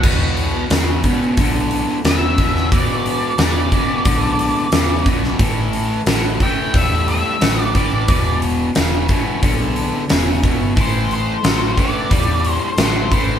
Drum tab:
CC |x---------------|----------------|----------------|----------------|
HH |--o-o-o-o-o-o-o-|o-o-o-o-o-o-o-o-|o-o-o-o-o-o-o-o-|o-o-o-o-o-o-o-o-|
SD |----o-------o--o|----o-------o--o|----o-------o---|----o-------o---|
BD |o-----o-o-----o-|o-----o-o-----o-|o-----o-o-----o-|o-----o-o-----o-|

CC |----------------|
HH |o-o-o-o-o-o-o-o-|
SD |----o-------o---|
BD |o-----o-o-----o-|